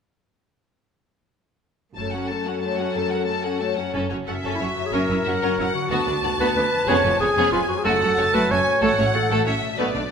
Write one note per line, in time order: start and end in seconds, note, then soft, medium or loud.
1.96 2.27 F#1 soft
1.96 3.73 F#2 soft
1.96 2.93 F#2 soft
1.96 2.13 A3 soft
1.96 3.73 C#4 soft
1.96 3.73 A4 soft
1.96 2.13 A4 soft
1.96 2.12 A5 soft
2.11 3.09 C#4 soft
2.11 2.30 C#4 soft
2.11 2.30 F#4 soft
2.11 2.29 F#5 soft
2.29 2.47 A3 soft
2.29 2.46 A4 soft
2.29 3.26 A4 soft
2.29 2.46 A5 soft
2.45 2.63 C#4 soft
2.45 2.62 F#4 soft
2.45 2.62 F#5 soft
2.45 3.42 F#5 soft
2.61 2.78 A3 soft
2.61 2.77 A4 soft
2.61 3.59 C#5 soft
2.61 2.77 A5 soft
2.78 2.95 C#4 soft
2.78 3.76 F#4 soft
2.78 2.95 F#4 soft
2.78 2.94 F#5 soft
2.93 3.76 F#2 soft
2.93 3.12 A3 soft
2.93 3.11 A4 soft
2.93 3.10 A5 soft
3.10 3.81 C#4 soft
3.10 3.28 C#4 soft
3.10 3.27 F#4 soft
3.10 3.27 F#5 soft
3.26 3.43 A3 soft
3.26 3.89 A4 soft
3.26 3.43 A4 soft
3.26 3.42 A5 soft
3.42 3.60 C#4 soft
3.42 3.60 F#4 soft
3.42 3.60 F#5 soft
3.42 6.90 F#5 soft
3.60 3.77 A3 soft
3.60 3.77 A4 soft
3.60 5.93 C#5 soft
3.60 3.78 A5 soft
3.76 4.74 F#2 soft
3.76 3.92 C#4 soft
3.76 3.94 F#4 soft
3.76 3.85 F#4 soft
3.76 3.95 F#5 soft
3.82 4.79 C#4 soft
3.86 4.88 F#4 soft
3.91 4.09 C#4 soft
3.91 4.92 A4 soft
3.91 4.10 A4 soft
3.95 4.01 F#1 soft
3.95 4.01 F#2 soft
4.10 4.18 F#1 soft
4.10 4.18 F#2 soft
4.10 4.17 C#4 soft
4.10 4.17 F#4 soft
4.10 4.17 C#5 soft
4.27 4.35 F#1 soft
4.27 4.35 F#2 soft
4.27 4.34 C#4 soft
4.27 4.50 C#4 soft
4.27 4.34 A4 soft
4.27 5.22 E5 soft
4.27 4.34 F#5 soft
4.43 4.51 F#1 soft
4.43 4.51 F#2 soft
4.43 4.60 C#4 soft
4.43 4.59 A4 soft
4.55 4.58 E4 soft
4.59 4.67 F#1 soft
4.59 4.66 F#2 soft
4.59 4.67 C#4 soft
4.59 4.68 F#4 soft
4.59 4.88 F#4 soft
4.59 4.66 C#5 soft
4.76 5.84 F#2 soft
4.80 5.86 C#4 soft
4.85 5.89 E4 soft
4.85 4.95 G#4 soft
4.89 4.99 F#1 soft
4.89 4.99 F#2 medium
4.89 5.86 F#4 soft
4.89 5.08 A#4 soft
4.93 5.09 C#4 soft
4.93 5.74 A#4 medium
5.09 5.16 F#1 soft
5.09 5.15 F#2 soft
5.09 5.17 C#4 soft
5.09 5.17 E4 soft
5.09 5.16 C#5 soft
5.25 5.32 F#1 soft
5.25 5.32 F#2 soft
5.25 5.33 C#4 soft
5.25 5.33 F#4 soft
5.25 5.32 E5 soft
5.25 5.57 F#5 soft
5.42 5.49 F#1 soft
5.42 5.49 F#2 medium
5.42 5.58 C#4 medium
5.42 5.58 A#4 soft
5.58 5.65 F#1 soft
5.58 5.65 F#2 soft
5.58 5.65 C#4 soft
5.58 5.66 E4 soft
5.58 5.65 C#5 soft
5.58 5.91 F#5 medium
5.73 6.81 D3 soft
5.73 5.90 F#4 medium
5.78 6.74 B3 soft
5.82 6.86 D4 soft
5.87 5.98 D2 soft
5.87 6.06 B3 soft
5.87 6.88 F#4 soft
5.87 6.40 F#4 medium
5.91 5.98 D2 medium
5.91 6.07 F#4 medium
5.91 7.19 A5 medium
6.06 6.14 D2 soft
6.06 6.15 B3 soft
6.06 6.14 D4 soft
6.06 6.13 B4 soft
6.23 6.30 D2 soft
6.23 6.31 D2 soft
6.23 6.30 B3 soft
6.23 6.30 F#4 soft
6.23 6.30 D5 soft
6.39 6.46 D2 medium
6.39 6.47 D2 medium
6.39 6.56 B3 medium
6.39 6.55 F#4 soft
6.39 6.48 B4 medium
6.55 6.62 D2 soft
6.55 6.63 D2 soft
6.55 6.64 B3 soft
6.55 6.63 D4 soft
6.55 6.61 B4 soft
6.55 6.90 B4 medium
6.71 7.78 F2 soft
6.76 7.80 B3 soft
6.80 7.75 C#4 soft
6.84 6.95 F1 medium
6.84 7.03 B3 medium
6.84 7.04 C#4 medium
6.84 7.84 G#4 soft
6.84 7.03 G#4 medium
6.84 7.20 C#5 medium
6.89 6.96 F2 medium
7.04 7.11 F1 soft
7.04 7.12 F2 soft
7.04 7.11 B3 soft
7.04 7.11 F4 soft
7.04 7.11 B4 soft
7.20 7.27 F1 soft
7.20 7.28 F2 soft
7.20 7.27 B3 soft
7.20 7.51 G#4 medium
7.20 7.27 G#4 soft
7.20 7.27 C#5 soft
7.20 7.85 G#5 medium
7.36 7.43 F1 medium
7.36 7.44 F2 medium
7.36 7.52 B3 medium
7.36 7.52 C#4 medium
7.36 7.52 G#4 medium
7.52 7.59 F1 soft
7.52 7.60 F2 soft
7.52 7.59 B3 soft
7.52 7.60 F4 medium
7.52 7.59 F4 soft
7.52 7.60 B4 soft
7.68 8.74 F#2 soft
7.68 7.80 F#4 medium
7.72 8.68 A3 soft
7.77 8.72 C#4 soft
7.77 7.83 G#4 medium
7.81 8.00 A3 medium
7.81 8.77 F#4 soft
7.81 8.35 A4 medium
7.85 7.92 F#1 medium
7.85 7.92 F#2 medium
7.85 8.00 F#4 medium
7.85 8.17 F#5 medium
8.01 8.09 F#1 soft
8.01 8.08 F#2 soft
8.01 8.08 A3 soft
8.01 8.08 C#4 soft
8.01 8.08 A4 soft
8.18 8.25 F#1 soft
8.18 8.25 F#2 soft
8.18 8.25 A3 soft
8.18 8.25 F#4 soft
8.18 8.25 C#5 soft
8.18 8.50 A5 medium
8.33 8.41 F#1 medium
8.33 8.41 F#2 medium
8.33 8.48 A3 medium
8.33 8.49 F#4 medium
8.33 8.53 B4 medium
8.49 8.57 F#1 soft
8.49 8.58 F#2 soft
8.49 8.56 A3 soft
8.49 8.56 C#4 soft
8.49 8.57 A4 soft
8.49 8.82 C#5 medium
8.49 8.82 G#5 medium
8.64 9.70 A2 soft
8.69 9.64 A3 soft
8.73 9.75 C#4 soft
8.78 9.73 F#4 soft
8.82 8.89 A1 medium
8.82 8.90 A2 medium
8.82 8.97 A3 medium
8.82 8.97 A4 medium
8.82 9.13 C#5 medium
8.82 9.45 F#5 medium
8.98 9.05 A1 soft
8.98 9.05 A2 soft
8.98 9.05 A3 soft
8.98 9.05 C#4 soft
8.98 9.05 C#5 soft
9.14 9.20 A1 soft
9.14 9.22 A2 soft
9.14 9.21 A3 soft
9.14 9.21 F#4 soft
9.14 9.45 A4 medium
9.14 9.20 F#5 soft
9.30 9.36 A1 medium
9.30 9.36 A2 medium
9.30 9.45 A3 medium
9.30 9.45 A4 medium
9.46 9.52 A1 soft
9.46 9.53 A2 soft
9.46 9.53 A3 soft
9.46 9.53 C#4 soft
9.46 9.53 C#5 soft
9.46 9.77 E5 medium
9.61 10.11 B2 soft
9.65 10.11 A3 soft
9.70 10.11 D4 soft
9.74 9.84 B1 medium
9.74 10.11 F#4 soft
9.74 9.93 B4 medium
9.78 9.85 B2 medium
9.78 9.93 A3 soft
9.78 9.93 B3 medium
9.78 10.11 D5 medium
9.94 10.00 B1 soft
9.94 10.01 B2 soft
9.94 10.01 A3 soft
9.94 10.01 D4 soft
9.94 10.01 D5 soft